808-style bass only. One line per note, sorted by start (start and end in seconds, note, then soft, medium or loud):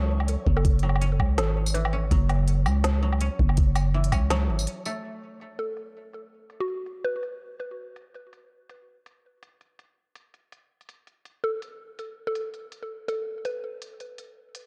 0.00 0.37 C#2 medium
0.47 1.21 F#1 medium
1.20 1.39 C#2 medium
1.38 2.10 G#1 loud
2.11 2.67 F#1 loud
2.66 3.30 C#2 medium
3.39 4.14 F#1 medium
4.13 4.51 C#2 medium
4.49 4.67 G#1 medium